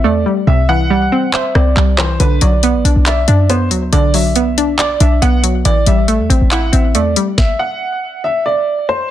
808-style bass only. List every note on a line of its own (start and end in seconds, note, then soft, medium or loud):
0.04 0.25 E2 loud
0.47 1.09 C2 loud
1.55 1.76 C2 loud
1.77 2.18 C2 loud
2.20 2.41 B1 loud
2.42 2.76 B1 loud
2.75 2.84 A1 loud
2.85 2.96 B1 loud
2.96 3.27 B1 loud
3.28 3.73 F#2 loud
3.71 3.92 D2 loud
3.93 4.97 B1 loud
5.00 5.21 B1 loud
5.22 5.64 B1 loud
5.65 5.86 A1 loud
5.87 6.21 A1 loud
6.20 6.29 E2 loud
6.30 6.41 A1 loud
6.41 6.72 A1 loud
6.73 6.96 A1 loud
6.95 7.15 E2 loud